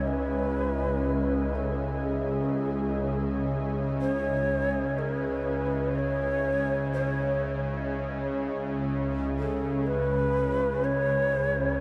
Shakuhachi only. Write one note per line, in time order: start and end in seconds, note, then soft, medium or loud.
0.07 1.57 B4 medium
1.55 2.05 A4 medium
2.03 3.72 G#4 medium
4.01 5.00 C#5 loud
4.98 5.12 A#4 medium
5.12 5.97 B4 medium
5.95 6.92 C#5 medium
5.95 5.99 D#5 medium
6.93 7.63 C#5 medium
9.39 9.88 A4 medium
9.87 10.86 B4 medium
10.84 11.80 C#5 loud